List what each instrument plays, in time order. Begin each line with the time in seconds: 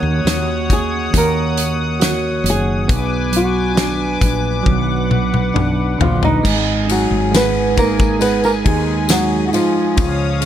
Already playing: tine electric piano D#3 A#3, nylon-string guitar A#4, analog synth pad C#5 F#5 D#6
0.03 fretless electric bass D#2
0.25 fretless electric bass D#2, tine electric piano F#4, snare, closed hi-hat
0.70 nylon-string guitar G#4, kick, closed hi-hat
1.13 fretless electric bass D#2, tine electric piano A#3, kick, closed hi-hat
1.18 nylon-string guitar A#4
1.57 closed hi-hat
2.00 tine electric piano F#4, snare, closed hi-hat
2.44 fretless electric bass F#1, tine electric piano D#3, closed hi-hat
2.50 nylon-string guitar G#4
2.88 fretless electric bass B1, tine electric piano B3, analog synth pad B4 G#5 D6, kick, closed hi-hat
3.32 tine electric piano F#3, closed hi-hat
3.36 nylon-string guitar F#4
3.75 tine electric piano D4, snare, closed hi-hat
4.21 fretless electric bass A#1, kick, closed hi-hat
4.63 fretless electric bass B1, tine electric piano F#3, analog synth pad F#5, kick, high tom
5.11 mid tom
5.34 mid tom
5.54 fretless electric bass B1, tine electric piano D4, mid tom
5.98 fretless electric bass A#1, tine electric piano D3, nylon-string guitar F3 F4, floor tom
6.23 nylon-string guitar D#4 D#5, floor tom
6.43 fretless electric bass G#1, tine electric piano G#3, analog synth pad G#4 G#5, kick, crash, tambourine
6.87 nylon-string guitar F#3, tine electric piano D#4, ride, tambourine
6.91 nylon-string guitar F#4
7.11 fretless electric bass G#1
7.31 tine electric piano G#3, snare, ride, tambourine
7.36 nylon-string guitar B3 B4
7.76 nylon-string guitar A#3 A#4, tine electric piano D#4, kick, ride, tambourine
7.99 kick, tambourine
8.19 tine electric piano G#3, nylon-string guitar B3 B4, ride, tambourine
8.44 nylon-string guitar A#3 A#4, tambourine
8.65 fretless electric bass D#2, nylon-string guitar G#3 G#4, tine electric piano D#4, kick, ride
9.09 nylon-string guitar F#3 F#4, tine electric piano G#3, snare, ride, tambourine
9.48 nylon-string guitar F#4
9.53 nylon-string guitar F3 F4, tine electric piano D#4, ride, tambourine
9.96 fretless electric bass C#2, tine electric piano C#3, analog synth pad C#5 F5 D#6, kick, ride, tambourine
10.41 tine electric piano C#3, ride